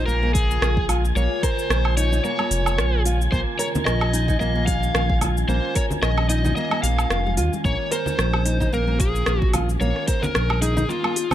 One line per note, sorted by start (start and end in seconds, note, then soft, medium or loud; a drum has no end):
0.00 3.28 C#3 medium
0.00 3.28 G#3 medium
0.00 3.28 A#3 medium
0.00 11.35 F4 medium
0.00 11.35 G#5 medium
0.06 0.58 A#1 medium
0.06 0.21 A#3 medium
0.06 0.33 A#4 loud
0.06 shaker soft
0.23 0.75 A#3 medium
0.34 0.85 G#4 medium
0.34 kick loud
0.34 open hi-hat medium
0.34 shaker medium
0.51 shaker soft
0.62 1.12 A#1 medium
0.62 cross-stick loud
0.62 shaker soft
0.77 kick loud
0.89 1.03 F4 medium
0.89 open hi-hat medium
0.89 low woodblock medium
0.89 shaker medium
1.05 shaker soft
1.16 1.28 A#1 loud
1.16 1.42 A#3 medium
1.16 1.41 C#5 loud
1.16 shaker soft
1.43 1.96 A#4 medium
1.43 1.94 C5 loud
1.43 kick loud
1.43 open hi-hat medium
1.43 shaker medium
1.59 shaker soft
1.70 2.20 A#1 loud
1.70 cross-stick loud
1.70 shaker soft
1.85 low woodblock medium
1.97 2.11 D#4 medium
1.97 2.23 C#5 loud
1.97 open hi-hat medium
1.97 shaker medium
2.12 2.19 D#4 medium
2.12 shaker soft
2.24 2.38 A#3 medium
2.24 3.01 C#5 loud
2.24 shaker soft
2.39 2.92 A#3 medium
2.39 low woodblock medium
2.51 2.79 F1 loud
2.51 open hi-hat medium
2.51 shaker medium
2.66 low woodblock medium
2.66 shaker soft
2.78 3.28 A#1 medium
2.78 cross-stick loud
2.78 shaker soft
3.05 3.20 F4 medium
3.05 open hi-hat medium
3.05 shaker medium
3.21 shaker soft
3.32 3.44 A#1 loud
3.32 11.35 D#3 medium
3.32 11.35 G#3 medium
3.32 3.58 A#3 medium
3.32 11.35 C#4 medium
3.32 3.39 C5 medium
3.32 kick loud
3.32 shaker soft
3.59 4.12 A#4 medium
3.59 3.66 C#5 medium
3.59 open hi-hat medium
3.59 shaker medium
3.75 low conga medium
3.75 shaker soft
3.85 4.37 A#1 loud
3.85 4.39 D#5 medium
3.85 cross-stick loud
3.85 shaker soft
4.01 high bongo medium
4.01 low woodblock medium
4.13 4.27 D#4 medium
4.13 open hi-hat medium
4.13 shaker medium
4.28 4.35 D#4 medium
4.28 kick medium
4.28 low conga medium
4.28 shaker soft
4.40 4.91 A#1 medium
4.40 4.54 A#3 medium
4.40 4.66 D#5 loud
4.40 shaker soft
4.55 5.08 A#3 medium
4.66 5.17 F5 loud
4.66 kick loud
4.66 open hi-hat medium
4.66 high bongo soft
4.66 shaker medium
4.83 shaker soft
4.94 5.45 A#1 medium
4.94 cross-stick loud
4.94 shaker soft
5.10 kick loud
5.10 high bongo soft
5.21 5.36 F4 medium
5.21 open hi-hat medium
5.21 high conga medium
5.21 low conga medium
5.21 low woodblock medium
5.21 shaker medium
5.37 shaker soft
5.48 5.60 A#1 loud
5.48 5.74 A#3 medium
5.48 5.74 C5 medium
5.48 shaker soft
5.75 6.28 A#4 medium
5.75 5.83 C#5 medium
5.75 kick loud
5.75 open hi-hat medium
5.75 shaker medium
5.90 high bongo soft
5.90 low conga medium
5.90 shaker soft
6.02 6.53 A#1 loud
6.02 6.28 D#5 medium
6.02 cross-stick loud
6.02 shaker soft
6.18 high bongo medium
6.18 low woodblock medium
6.29 6.43 D#4 medium
6.29 6.55 D#5 loud
6.29 open hi-hat medium
6.29 shaker medium
6.44 6.51 D#4 loud
6.44 low conga medium
6.44 shaker soft
6.56 6.70 A#3 medium
6.56 6.82 D#5 loud
6.56 shaker soft
6.71 7.24 A#3 medium
6.71 low woodblock medium
6.83 7.06 A#1 medium
6.83 7.33 F5 loud
6.83 open hi-hat medium
6.83 high bongo medium
6.83 shaker medium
6.99 low woodblock medium
6.99 shaker soft
7.10 7.39 F1 medium
7.10 cross-stick loud
7.10 shaker soft
7.27 high bongo soft
7.27 high conga medium
7.37 7.50 D#2 medium
7.37 7.52 F4 medium
7.37 open hi-hat medium
7.37 shaker medium
7.53 high bongo soft
7.53 high conga medium
7.53 shaker soft
7.64 7.77 A#1 loud
7.64 7.90 A#3 medium
7.64 7.92 C#5 loud
7.64 kick loud
7.64 shaker soft
7.92 8.45 A#4 medium
7.92 8.74 C5 loud
7.92 open hi-hat medium
7.92 shaker medium
8.06 low conga medium
8.06 shaker soft
8.19 8.69 A#1 loud
8.19 cross-stick loud
8.19 shaker soft
8.34 high bongo medium
8.34 low woodblock medium
8.46 8.59 D#4 medium
8.46 open hi-hat medium
8.46 shaker medium
8.60 8.67 D#4 loud
8.60 kick medium
8.60 low conga medium
8.60 shaker soft
8.72 9.23 A#1 medium
8.72 8.86 A#3 medium
8.72 8.99 A#4 loud
8.72 shaker soft
8.88 9.40 A#3 medium
9.00 9.51 G#4 medium
9.00 kick loud
9.00 open hi-hat loud
9.00 high bongo soft
9.00 shaker medium
9.15 shaker soft
9.26 9.77 A#1 medium
9.26 cross-stick loud
9.26 shaker soft
9.42 kick loud
9.42 high bongo medium
9.53 9.68 F4 medium
9.53 open hi-hat medium
9.53 high conga medium
9.53 low conga medium
9.53 low woodblock medium
9.53 shaker medium
9.69 shaker soft
9.81 9.93 A#1 loud
9.81 10.07 A#3 medium
9.81 10.06 C#5 loud
9.81 shaker soft
9.96 cross-stick soft
10.08 10.61 A#4 medium
10.08 10.23 C5 loud
10.08 kick loud
10.08 open hi-hat medium
10.08 shaker medium
10.22 10.61 A#4 loud
10.22 high bongo soft
10.22 low conga loud
10.22 shaker soft
10.35 10.86 A#1 loud
10.35 cross-stick loud
10.35 shaker soft
10.50 high bongo medium
10.50 high conga medium
10.50 low woodblock medium
10.62 10.75 D#4 medium
10.62 10.90 G#4 medium
10.62 open hi-hat medium
10.62 shaker medium
10.77 10.84 D#4 loud
10.77 low conga medium
10.77 shaker soft
10.89 11.02 A#3 medium
10.89 11.35 F4 medium
10.89 shaker soft
11.04 11.15 A#3 medium
11.04 low woodblock medium
11.16 open hi-hat loud
11.16 high bongo soft
11.16 shaker medium
11.31 11.35 C4 medium
11.31 low conga medium
11.31 low woodblock medium